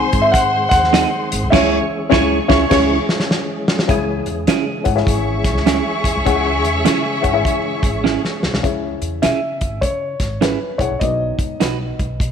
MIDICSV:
0, 0, Header, 1, 8, 480
1, 0, Start_track
1, 0, Key_signature, 4, "minor"
1, 0, Tempo, 593472
1, 1233, Time_signature, 4, 2, 24, 8
1, 6985, Key_signature, 4, "minor"
1, 9962, End_track
2, 0, Start_track
2, 0, Title_t, "Grand piano"
2, 0, Program_c, 0, 0
2, 0, Note_on_c, 0, 80, 107
2, 175, Note_on_c, 0, 76, 91
2, 194, Note_off_c, 0, 80, 0
2, 256, Note_on_c, 0, 78, 103
2, 272, Note_off_c, 0, 76, 0
2, 546, Note_off_c, 0, 78, 0
2, 558, Note_on_c, 0, 78, 115
2, 1190, Note_off_c, 0, 78, 0
2, 1216, Note_on_c, 0, 76, 91
2, 2929, Note_off_c, 0, 76, 0
2, 7459, Note_on_c, 0, 76, 87
2, 7938, Note_on_c, 0, 73, 75
2, 7959, Note_off_c, 0, 76, 0
2, 8423, Note_on_c, 0, 71, 67
2, 8440, Note_off_c, 0, 73, 0
2, 8721, Note_on_c, 0, 73, 78
2, 8741, Note_off_c, 0, 71, 0
2, 8893, Note_on_c, 0, 75, 76
2, 8911, Note_off_c, 0, 73, 0
2, 9962, Note_off_c, 0, 75, 0
2, 9962, End_track
3, 0, Start_track
3, 0, Title_t, "String section"
3, 0, Program_c, 1, 48
3, 0, Note_on_c, 1, 72, 93
3, 0, Note_on_c, 1, 84, 107
3, 1199, Note_off_c, 1, 72, 0
3, 1199, Note_off_c, 1, 84, 0
3, 1238, Note_on_c, 1, 73, 96
3, 1239, Note_on_c, 1, 85, 96
3, 1442, Note_off_c, 1, 73, 0
3, 1442, Note_off_c, 1, 85, 0
3, 1711, Note_on_c, 1, 73, 92
3, 1711, Note_on_c, 1, 85, 98
3, 1916, Note_off_c, 1, 73, 0
3, 1917, Note_off_c, 1, 85, 0
3, 2019, Note_on_c, 1, 73, 94
3, 2019, Note_on_c, 1, 85, 100
3, 2136, Note_off_c, 1, 73, 0
3, 2136, Note_off_c, 1, 85, 0
3, 2186, Note_on_c, 1, 73, 97
3, 2186, Note_on_c, 1, 85, 107
3, 2393, Note_off_c, 1, 73, 0
3, 2393, Note_off_c, 1, 85, 0
3, 4103, Note_on_c, 1, 85, 94
3, 4105, Note_on_c, 1, 68, 80
3, 4108, Note_on_c, 1, 76, 83
3, 6952, Note_off_c, 1, 85, 0
3, 6953, Note_off_c, 1, 68, 0
3, 6955, Note_off_c, 1, 76, 0
3, 9962, End_track
4, 0, Start_track
4, 0, Title_t, "Upright piano"
4, 0, Program_c, 2, 0
4, 0, Note_on_c, 2, 60, 75
4, 0, Note_on_c, 2, 63, 68
4, 0, Note_on_c, 2, 68, 68
4, 0, Note_on_c, 2, 72, 66
4, 0, Note_on_c, 2, 78, 80
4, 320, Note_off_c, 2, 68, 0
4, 321, Note_off_c, 2, 60, 0
4, 321, Note_off_c, 2, 63, 0
4, 321, Note_off_c, 2, 72, 0
4, 322, Note_off_c, 2, 78, 0
4, 1230, Note_on_c, 2, 76, 90
4, 1231, Note_on_c, 2, 49, 94
4, 1231, Note_on_c, 2, 64, 99
4, 1232, Note_on_c, 2, 61, 100
4, 1232, Note_on_c, 2, 68, 101
4, 1232, Note_on_c, 2, 73, 97
4, 1437, Note_off_c, 2, 49, 0
4, 1437, Note_off_c, 2, 64, 0
4, 1437, Note_off_c, 2, 76, 0
4, 1438, Note_off_c, 2, 61, 0
4, 1438, Note_off_c, 2, 68, 0
4, 1438, Note_off_c, 2, 73, 0
4, 1694, Note_on_c, 2, 61, 101
4, 1695, Note_on_c, 2, 73, 103
4, 1695, Note_on_c, 2, 76, 103
4, 1697, Note_on_c, 2, 64, 96
4, 1697, Note_on_c, 2, 68, 98
4, 1907, Note_off_c, 2, 61, 0
4, 1907, Note_off_c, 2, 73, 0
4, 1907, Note_off_c, 2, 76, 0
4, 1909, Note_off_c, 2, 64, 0
4, 1909, Note_off_c, 2, 68, 0
4, 2008, Note_on_c, 2, 61, 88
4, 2008, Note_on_c, 2, 76, 95
4, 2009, Note_on_c, 2, 64, 92
4, 2010, Note_on_c, 2, 68, 92
4, 2011, Note_on_c, 2, 73, 102
4, 2130, Note_off_c, 2, 61, 0
4, 2130, Note_off_c, 2, 64, 0
4, 2130, Note_off_c, 2, 76, 0
4, 2131, Note_off_c, 2, 68, 0
4, 2131, Note_off_c, 2, 73, 0
4, 2179, Note_on_c, 2, 61, 91
4, 2185, Note_on_c, 2, 64, 93
4, 2185, Note_on_c, 2, 73, 89
4, 2185, Note_on_c, 2, 76, 93
4, 2187, Note_on_c, 2, 68, 86
4, 2389, Note_off_c, 2, 61, 0
4, 2392, Note_off_c, 2, 64, 0
4, 2393, Note_off_c, 2, 68, 0
4, 2393, Note_off_c, 2, 73, 0
4, 2393, Note_off_c, 2, 76, 0
4, 3136, Note_on_c, 2, 64, 79
4, 3137, Note_on_c, 2, 73, 72
4, 3139, Note_on_c, 2, 49, 74
4, 3141, Note_on_c, 2, 68, 79
4, 3144, Note_on_c, 2, 76, 88
4, 3553, Note_off_c, 2, 64, 0
4, 3553, Note_off_c, 2, 73, 0
4, 3555, Note_off_c, 2, 68, 0
4, 3557, Note_off_c, 2, 76, 0
4, 3891, Note_off_c, 2, 49, 0
4, 3913, Note_on_c, 2, 64, 69
4, 3915, Note_on_c, 2, 73, 72
4, 3917, Note_on_c, 2, 68, 72
4, 3919, Note_on_c, 2, 78, 90
4, 3968, Note_off_c, 2, 64, 0
4, 3968, Note_off_c, 2, 73, 0
4, 3970, Note_off_c, 2, 68, 0
4, 3971, Note_off_c, 2, 78, 0
4, 4006, Note_on_c, 2, 68, 87
4, 4007, Note_on_c, 2, 64, 93
4, 4008, Note_on_c, 2, 73, 74
4, 4011, Note_on_c, 2, 76, 101
4, 4518, Note_off_c, 2, 68, 0
4, 4519, Note_off_c, 2, 64, 0
4, 4519, Note_off_c, 2, 73, 0
4, 4521, Note_off_c, 2, 76, 0
4, 5056, Note_on_c, 2, 64, 75
4, 5057, Note_on_c, 2, 49, 74
4, 5057, Note_on_c, 2, 68, 80
4, 5060, Note_on_c, 2, 73, 68
4, 5061, Note_on_c, 2, 78, 92
4, 5472, Note_off_c, 2, 64, 0
4, 5473, Note_off_c, 2, 68, 0
4, 5474, Note_off_c, 2, 73, 0
4, 5475, Note_off_c, 2, 78, 0
4, 5811, Note_off_c, 2, 49, 0
4, 5838, Note_on_c, 2, 64, 74
4, 5838, Note_on_c, 2, 68, 74
4, 5843, Note_on_c, 2, 78, 84
4, 5845, Note_on_c, 2, 73, 72
4, 5889, Note_off_c, 2, 64, 0
4, 5890, Note_off_c, 2, 68, 0
4, 5892, Note_off_c, 2, 78, 0
4, 5893, Note_off_c, 2, 73, 0
4, 5928, Note_on_c, 2, 64, 91
4, 5931, Note_on_c, 2, 68, 80
4, 5934, Note_on_c, 2, 73, 76
4, 5934, Note_on_c, 2, 76, 95
4, 6440, Note_off_c, 2, 64, 0
4, 6442, Note_off_c, 2, 68, 0
4, 6443, Note_off_c, 2, 73, 0
4, 6443, Note_off_c, 2, 76, 0
4, 6976, Note_on_c, 2, 49, 64
4, 6980, Note_on_c, 2, 64, 73
4, 6981, Note_on_c, 2, 73, 69
4, 6981, Note_on_c, 2, 76, 81
4, 6982, Note_on_c, 2, 68, 64
4, 7513, Note_off_c, 2, 64, 0
4, 7513, Note_off_c, 2, 73, 0
4, 7513, Note_off_c, 2, 76, 0
4, 7514, Note_off_c, 2, 68, 0
4, 7734, Note_off_c, 2, 49, 0
4, 8732, Note_on_c, 2, 64, 69
4, 8732, Note_on_c, 2, 73, 59
4, 8734, Note_on_c, 2, 68, 66
4, 8737, Note_on_c, 2, 78, 77
4, 8829, Note_off_c, 2, 64, 0
4, 8829, Note_off_c, 2, 73, 0
4, 8831, Note_off_c, 2, 68, 0
4, 8832, Note_off_c, 2, 78, 0
4, 8911, Note_on_c, 2, 66, 58
4, 8912, Note_on_c, 2, 47, 54
4, 8912, Note_on_c, 2, 63, 67
4, 8915, Note_on_c, 2, 71, 55
4, 8916, Note_on_c, 2, 74, 59
4, 8968, Note_on_c, 2, 75, 70
4, 8981, Note_off_c, 2, 74, 0
4, 9444, Note_off_c, 2, 63, 0
4, 9444, Note_off_c, 2, 66, 0
4, 9446, Note_off_c, 2, 71, 0
4, 9472, Note_off_c, 2, 75, 0
4, 9668, Note_off_c, 2, 47, 0
4, 9962, End_track
5, 0, Start_track
5, 0, Title_t, "Clean electric guitar"
5, 0, Program_c, 3, 27
5, 751, Note_on_c, 3, 60, 89
5, 757, Note_on_c, 3, 63, 96
5, 762, Note_on_c, 3, 68, 93
5, 881, Note_off_c, 3, 60, 0
5, 884, Note_off_c, 3, 63, 0
5, 887, Note_off_c, 3, 68, 0
5, 1230, Note_on_c, 3, 61, 90
5, 1238, Note_on_c, 3, 64, 86
5, 1242, Note_on_c, 3, 68, 99
5, 1437, Note_off_c, 3, 61, 0
5, 1441, Note_off_c, 3, 64, 0
5, 1443, Note_off_c, 3, 68, 0
5, 1710, Note_on_c, 3, 61, 105
5, 1718, Note_on_c, 3, 64, 106
5, 1722, Note_on_c, 3, 68, 116
5, 1916, Note_off_c, 3, 61, 0
5, 1920, Note_off_c, 3, 64, 0
5, 1923, Note_off_c, 3, 68, 0
5, 2012, Note_on_c, 3, 61, 101
5, 2017, Note_on_c, 3, 64, 94
5, 2025, Note_on_c, 3, 68, 103
5, 2132, Note_off_c, 3, 61, 0
5, 2135, Note_off_c, 3, 64, 0
5, 2139, Note_off_c, 3, 68, 0
5, 2189, Note_on_c, 3, 61, 104
5, 2195, Note_on_c, 3, 64, 92
5, 2198, Note_on_c, 3, 68, 97
5, 2394, Note_off_c, 3, 61, 0
5, 2398, Note_off_c, 3, 64, 0
5, 2400, Note_off_c, 3, 68, 0
5, 3622, Note_on_c, 3, 61, 84
5, 3629, Note_on_c, 3, 64, 70
5, 3631, Note_on_c, 3, 68, 76
5, 3752, Note_off_c, 3, 61, 0
5, 3755, Note_off_c, 3, 64, 0
5, 3756, Note_off_c, 3, 68, 0
5, 4580, Note_on_c, 3, 61, 88
5, 4587, Note_on_c, 3, 64, 90
5, 4594, Note_on_c, 3, 68, 88
5, 4710, Note_off_c, 3, 61, 0
5, 4714, Note_off_c, 3, 64, 0
5, 4717, Note_off_c, 3, 68, 0
5, 5539, Note_on_c, 3, 61, 90
5, 5544, Note_on_c, 3, 64, 95
5, 5549, Note_on_c, 3, 68, 88
5, 5670, Note_off_c, 3, 61, 0
5, 5672, Note_off_c, 3, 64, 0
5, 5675, Note_off_c, 3, 68, 0
5, 6503, Note_on_c, 3, 61, 78
5, 6510, Note_on_c, 3, 64, 81
5, 6515, Note_on_c, 3, 68, 81
5, 6632, Note_off_c, 3, 61, 0
5, 6636, Note_off_c, 3, 64, 0
5, 6639, Note_off_c, 3, 68, 0
5, 7462, Note_on_c, 3, 61, 66
5, 7468, Note_on_c, 3, 64, 81
5, 7474, Note_on_c, 3, 68, 80
5, 7593, Note_off_c, 3, 61, 0
5, 7596, Note_off_c, 3, 64, 0
5, 7600, Note_off_c, 3, 68, 0
5, 8421, Note_on_c, 3, 61, 75
5, 8427, Note_on_c, 3, 64, 74
5, 8431, Note_on_c, 3, 68, 79
5, 8555, Note_off_c, 3, 61, 0
5, 8558, Note_off_c, 3, 64, 0
5, 8560, Note_off_c, 3, 68, 0
5, 9385, Note_on_c, 3, 63, 77
5, 9393, Note_on_c, 3, 66, 73
5, 9396, Note_on_c, 3, 71, 81
5, 9520, Note_off_c, 3, 63, 0
5, 9524, Note_off_c, 3, 66, 0
5, 9525, Note_off_c, 3, 71, 0
5, 9962, End_track
6, 0, Start_track
6, 0, Title_t, "Tonewheel organ"
6, 0, Program_c, 4, 16
6, 0, Note_on_c, 4, 51, 68
6, 0, Note_on_c, 4, 56, 64
6, 0, Note_on_c, 4, 60, 60
6, 0, Note_on_c, 4, 68, 75
6, 1212, Note_off_c, 4, 60, 0
6, 1214, Note_off_c, 4, 51, 0
6, 1248, Note_on_c, 4, 61, 70
6, 1250, Note_on_c, 4, 52, 70
6, 3115, Note_off_c, 4, 56, 0
6, 3116, Note_off_c, 4, 68, 0
6, 3134, Note_off_c, 4, 61, 0
6, 3135, Note_off_c, 4, 52, 0
6, 3151, Note_on_c, 4, 52, 68
6, 3151, Note_on_c, 4, 68, 74
6, 3156, Note_on_c, 4, 56, 59
6, 3160, Note_on_c, 4, 61, 54
6, 6955, Note_off_c, 4, 52, 0
6, 6955, Note_off_c, 4, 68, 0
6, 6957, Note_off_c, 4, 56, 0
6, 6960, Note_off_c, 4, 61, 0
6, 9962, End_track
7, 0, Start_track
7, 0, Title_t, "Upright bass"
7, 0, Program_c, 5, 32
7, 106, Note_on_c, 5, 32, 96
7, 244, Note_off_c, 5, 32, 0
7, 274, Note_on_c, 5, 44, 91
7, 517, Note_off_c, 5, 44, 0
7, 576, Note_on_c, 5, 39, 88
7, 839, Note_off_c, 5, 39, 0
7, 1072, Note_on_c, 5, 32, 85
7, 1136, Note_off_c, 5, 32, 0
7, 1153, Note_on_c, 5, 36, 88
7, 1220, Note_off_c, 5, 36, 0
7, 1237, Note_on_c, 5, 37, 102
7, 1441, Note_off_c, 5, 37, 0
7, 1717, Note_on_c, 5, 37, 102
7, 1920, Note_off_c, 5, 37, 0
7, 2018, Note_on_c, 5, 37, 99
7, 2135, Note_off_c, 5, 37, 0
7, 2196, Note_on_c, 5, 37, 103
7, 2399, Note_off_c, 5, 37, 0
7, 3148, Note_on_c, 5, 37, 100
7, 3389, Note_off_c, 5, 37, 0
7, 3451, Note_on_c, 5, 40, 91
7, 3591, Note_off_c, 5, 40, 0
7, 3618, Note_on_c, 5, 49, 89
7, 3863, Note_off_c, 5, 49, 0
7, 3933, Note_on_c, 5, 32, 85
7, 4071, Note_off_c, 5, 32, 0
7, 4099, Note_on_c, 5, 32, 93
7, 4492, Note_off_c, 5, 32, 0
7, 4492, Note_on_c, 5, 37, 89
7, 4684, Note_off_c, 5, 37, 0
7, 4886, Note_on_c, 5, 40, 83
7, 4956, Note_off_c, 5, 40, 0
7, 4979, Note_on_c, 5, 36, 79
7, 5047, Note_off_c, 5, 36, 0
7, 5068, Note_on_c, 5, 37, 100
7, 5377, Note_off_c, 5, 37, 0
7, 5377, Note_on_c, 5, 40, 85
7, 5513, Note_off_c, 5, 40, 0
7, 5552, Note_on_c, 5, 49, 89
7, 5859, Note_on_c, 5, 32, 82
7, 5871, Note_off_c, 5, 49, 0
7, 5995, Note_off_c, 5, 32, 0
7, 6028, Note_on_c, 5, 49, 93
7, 6269, Note_off_c, 5, 49, 0
7, 6331, Note_on_c, 5, 32, 82
7, 6592, Note_off_c, 5, 32, 0
7, 6816, Note_on_c, 5, 36, 84
7, 6883, Note_off_c, 5, 36, 0
7, 6899, Note_on_c, 5, 36, 84
7, 6968, Note_off_c, 5, 36, 0
7, 6988, Note_on_c, 5, 37, 83
7, 7230, Note_off_c, 5, 37, 0
7, 7289, Note_on_c, 5, 40, 74
7, 7472, Note_on_c, 5, 49, 76
7, 7484, Note_off_c, 5, 40, 0
7, 7776, Note_on_c, 5, 32, 68
7, 7788, Note_off_c, 5, 49, 0
7, 7915, Note_off_c, 5, 32, 0
7, 7945, Note_on_c, 5, 49, 84
7, 8190, Note_off_c, 5, 49, 0
7, 8253, Note_on_c, 5, 32, 78
7, 8517, Note_off_c, 5, 32, 0
7, 8731, Note_on_c, 5, 35, 80
7, 8804, Note_off_c, 5, 35, 0
7, 8822, Note_on_c, 5, 34, 67
7, 8894, Note_off_c, 5, 34, 0
7, 8906, Note_on_c, 5, 35, 92
7, 9152, Note_off_c, 5, 35, 0
7, 9210, Note_on_c, 5, 37, 74
7, 9355, Note_off_c, 5, 37, 0
7, 9389, Note_on_c, 5, 35, 72
7, 9636, Note_off_c, 5, 35, 0
7, 9700, Note_on_c, 5, 35, 72
7, 9842, Note_off_c, 5, 35, 0
7, 9865, Note_on_c, 5, 47, 95
7, 9962, Note_off_c, 5, 47, 0
7, 9962, End_track
8, 0, Start_track
8, 0, Title_t, "Drums"
8, 103, Note_on_c, 9, 42, 63
8, 107, Note_on_c, 9, 36, 93
8, 184, Note_off_c, 9, 42, 0
8, 188, Note_off_c, 9, 36, 0
8, 274, Note_on_c, 9, 36, 102
8, 281, Note_on_c, 9, 42, 90
8, 354, Note_off_c, 9, 36, 0
8, 362, Note_off_c, 9, 42, 0
8, 577, Note_on_c, 9, 42, 91
8, 578, Note_on_c, 9, 36, 99
8, 580, Note_on_c, 9, 38, 43
8, 658, Note_off_c, 9, 42, 0
8, 659, Note_off_c, 9, 36, 0
8, 661, Note_off_c, 9, 38, 0
8, 679, Note_on_c, 9, 38, 35
8, 759, Note_on_c, 9, 42, 99
8, 760, Note_off_c, 9, 38, 0
8, 760, Note_on_c, 9, 38, 120
8, 840, Note_off_c, 9, 42, 0
8, 841, Note_off_c, 9, 38, 0
8, 1067, Note_on_c, 9, 42, 96
8, 1148, Note_off_c, 9, 42, 0
8, 1239, Note_on_c, 9, 36, 114
8, 1243, Note_on_c, 9, 49, 90
8, 1246, Note_on_c, 9, 38, 99
8, 1319, Note_off_c, 9, 36, 0
8, 1324, Note_off_c, 9, 49, 0
8, 1327, Note_off_c, 9, 38, 0
8, 1716, Note_on_c, 9, 36, 101
8, 1719, Note_on_c, 9, 38, 101
8, 1797, Note_off_c, 9, 36, 0
8, 1800, Note_off_c, 9, 38, 0
8, 2019, Note_on_c, 9, 36, 113
8, 2024, Note_on_c, 9, 38, 106
8, 2100, Note_off_c, 9, 36, 0
8, 2105, Note_off_c, 9, 38, 0
8, 2191, Note_on_c, 9, 49, 90
8, 2193, Note_on_c, 9, 36, 102
8, 2195, Note_on_c, 9, 38, 123
8, 2272, Note_off_c, 9, 49, 0
8, 2274, Note_off_c, 9, 36, 0
8, 2275, Note_off_c, 9, 38, 0
8, 2499, Note_on_c, 9, 38, 81
8, 2580, Note_off_c, 9, 38, 0
8, 2586, Note_on_c, 9, 38, 73
8, 2667, Note_off_c, 9, 38, 0
8, 2676, Note_on_c, 9, 38, 88
8, 2757, Note_off_c, 9, 38, 0
8, 2977, Note_on_c, 9, 38, 115
8, 3058, Note_off_c, 9, 38, 0
8, 3065, Note_on_c, 9, 38, 98
8, 3146, Note_off_c, 9, 38, 0
8, 3146, Note_on_c, 9, 36, 110
8, 3146, Note_on_c, 9, 42, 71
8, 3227, Note_off_c, 9, 36, 0
8, 3227, Note_off_c, 9, 42, 0
8, 3446, Note_on_c, 9, 42, 58
8, 3527, Note_off_c, 9, 42, 0
8, 3618, Note_on_c, 9, 42, 81
8, 3623, Note_on_c, 9, 38, 97
8, 3699, Note_off_c, 9, 42, 0
8, 3704, Note_off_c, 9, 38, 0
8, 3924, Note_on_c, 9, 42, 62
8, 3931, Note_on_c, 9, 36, 82
8, 4005, Note_off_c, 9, 42, 0
8, 4012, Note_off_c, 9, 36, 0
8, 4021, Note_on_c, 9, 38, 33
8, 4099, Note_on_c, 9, 36, 94
8, 4102, Note_off_c, 9, 38, 0
8, 4110, Note_on_c, 9, 42, 73
8, 4180, Note_off_c, 9, 36, 0
8, 4190, Note_off_c, 9, 42, 0
8, 4404, Note_on_c, 9, 36, 91
8, 4404, Note_on_c, 9, 42, 83
8, 4407, Note_on_c, 9, 38, 34
8, 4485, Note_off_c, 9, 36, 0
8, 4485, Note_off_c, 9, 42, 0
8, 4488, Note_off_c, 9, 38, 0
8, 4504, Note_on_c, 9, 38, 34
8, 4584, Note_on_c, 9, 42, 90
8, 4585, Note_off_c, 9, 38, 0
8, 4585, Note_on_c, 9, 38, 100
8, 4665, Note_off_c, 9, 42, 0
8, 4666, Note_off_c, 9, 38, 0
8, 4886, Note_on_c, 9, 36, 96
8, 4895, Note_on_c, 9, 42, 89
8, 4967, Note_off_c, 9, 36, 0
8, 4976, Note_off_c, 9, 42, 0
8, 5067, Note_on_c, 9, 36, 87
8, 5067, Note_on_c, 9, 42, 65
8, 5148, Note_off_c, 9, 36, 0
8, 5148, Note_off_c, 9, 42, 0
8, 5374, Note_on_c, 9, 42, 62
8, 5455, Note_off_c, 9, 42, 0
8, 5545, Note_on_c, 9, 42, 84
8, 5550, Note_on_c, 9, 38, 95
8, 5626, Note_off_c, 9, 42, 0
8, 5631, Note_off_c, 9, 38, 0
8, 5855, Note_on_c, 9, 42, 64
8, 5858, Note_on_c, 9, 36, 75
8, 5936, Note_off_c, 9, 42, 0
8, 5939, Note_off_c, 9, 36, 0
8, 6026, Note_on_c, 9, 36, 103
8, 6038, Note_on_c, 9, 42, 83
8, 6107, Note_off_c, 9, 36, 0
8, 6118, Note_off_c, 9, 42, 0
8, 6332, Note_on_c, 9, 36, 99
8, 6339, Note_on_c, 9, 42, 83
8, 6412, Note_off_c, 9, 36, 0
8, 6420, Note_off_c, 9, 42, 0
8, 6516, Note_on_c, 9, 38, 58
8, 6597, Note_off_c, 9, 38, 0
8, 6669, Note_on_c, 9, 38, 55
8, 6750, Note_off_c, 9, 38, 0
8, 6819, Note_on_c, 9, 38, 83
8, 6900, Note_off_c, 9, 38, 0
8, 6906, Note_on_c, 9, 38, 82
8, 6987, Note_off_c, 9, 38, 0
8, 6988, Note_on_c, 9, 36, 83
8, 6988, Note_on_c, 9, 42, 61
8, 7068, Note_off_c, 9, 42, 0
8, 7069, Note_off_c, 9, 36, 0
8, 7293, Note_on_c, 9, 42, 55
8, 7374, Note_off_c, 9, 42, 0
8, 7463, Note_on_c, 9, 42, 84
8, 7468, Note_on_c, 9, 38, 77
8, 7544, Note_off_c, 9, 42, 0
8, 7549, Note_off_c, 9, 38, 0
8, 7772, Note_on_c, 9, 42, 59
8, 7776, Note_on_c, 9, 36, 79
8, 7853, Note_off_c, 9, 42, 0
8, 7857, Note_off_c, 9, 36, 0
8, 7942, Note_on_c, 9, 36, 83
8, 7951, Note_on_c, 9, 42, 74
8, 8023, Note_off_c, 9, 36, 0
8, 8032, Note_off_c, 9, 42, 0
8, 8248, Note_on_c, 9, 42, 74
8, 8249, Note_on_c, 9, 36, 82
8, 8251, Note_on_c, 9, 38, 31
8, 8329, Note_off_c, 9, 42, 0
8, 8330, Note_off_c, 9, 36, 0
8, 8332, Note_off_c, 9, 38, 0
8, 8429, Note_on_c, 9, 38, 101
8, 8429, Note_on_c, 9, 42, 85
8, 8509, Note_off_c, 9, 42, 0
8, 8510, Note_off_c, 9, 38, 0
8, 8728, Note_on_c, 9, 36, 83
8, 8740, Note_on_c, 9, 42, 75
8, 8809, Note_off_c, 9, 36, 0
8, 8820, Note_off_c, 9, 42, 0
8, 8906, Note_on_c, 9, 42, 67
8, 8907, Note_on_c, 9, 36, 90
8, 8987, Note_off_c, 9, 42, 0
8, 8988, Note_off_c, 9, 36, 0
8, 9209, Note_on_c, 9, 36, 84
8, 9214, Note_on_c, 9, 42, 62
8, 9290, Note_off_c, 9, 36, 0
8, 9295, Note_off_c, 9, 42, 0
8, 9387, Note_on_c, 9, 42, 81
8, 9392, Note_on_c, 9, 38, 84
8, 9468, Note_off_c, 9, 42, 0
8, 9473, Note_off_c, 9, 38, 0
8, 9701, Note_on_c, 9, 36, 74
8, 9702, Note_on_c, 9, 42, 53
8, 9782, Note_off_c, 9, 36, 0
8, 9783, Note_off_c, 9, 42, 0
8, 9867, Note_on_c, 9, 36, 83
8, 9877, Note_on_c, 9, 42, 70
8, 9948, Note_off_c, 9, 36, 0
8, 9958, Note_off_c, 9, 42, 0
8, 9962, End_track
0, 0, End_of_file